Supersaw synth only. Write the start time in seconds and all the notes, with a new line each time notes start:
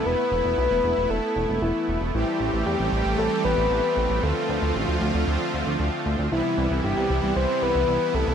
Already playing: B3 E4
0.06 A3
2.14 E3 G3 C4 G4
4.23 D3 F3 F4
6.32 C3 E3 G3 B3 E4